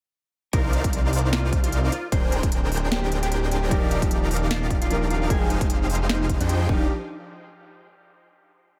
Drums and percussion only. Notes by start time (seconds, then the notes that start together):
0.53 kick, closed hi-hat
0.73 closed hi-hat
0.84 kick, closed hi-hat
0.93 closed hi-hat
1.13 open hi-hat
1.19 closed hi-hat
1.33 snare, closed hi-hat
1.53 kick, closed hi-hat
1.64 closed hi-hat
1.72 closed hi-hat
1.92 closed hi-hat
2.12 kick, closed hi-hat
2.32 closed hi-hat
2.43 kick, closed hi-hat
2.52 closed hi-hat
2.72 open hi-hat
2.77 closed hi-hat
2.92 snare, closed hi-hat
3.12 closed hi-hat
3.23 closed hi-hat
3.32 closed hi-hat
3.52 closed hi-hat
3.71 kick, closed hi-hat
3.91 closed hi-hat
4.02 kick, closed hi-hat
4.11 closed hi-hat
4.31 open hi-hat
4.36 closed hi-hat
4.51 snare, closed hi-hat
4.70 kick, closed hi-hat
4.82 closed hi-hat
4.91 closed hi-hat
5.11 closed hi-hat
5.30 kick, closed hi-hat
5.50 closed hi-hat
5.61 kick, closed hi-hat
5.70 closed hi-hat
5.90 open hi-hat
5.95 closed hi-hat
6.09 snare, closed hi-hat
6.29 kick, closed hi-hat
6.41 closed hi-hat
6.49 closed hi-hat
6.69 kick